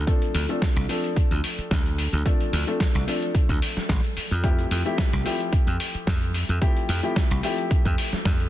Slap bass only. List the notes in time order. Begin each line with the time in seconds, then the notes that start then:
0.35 D2
0.76 C2
1.16 muted slap bass stroke
1.31 D2
1.58 muted slap bass stroke
1.71 D2
2.13 D2
2.53 D2
2.95 C2
3.49 D2
3.77 muted slap bass stroke
3.89 A1
4.17 muted slap bass stroke
4.31 F2
4.71 F2
5.13 C2
5.52 muted slap bass stroke
5.67 F2
5.95 muted slap bass stroke
6.07 F2
6.49 F2
6.89 F2
7.31 C2
7.85 F2
8.13 muted slap bass stroke
8.25 F2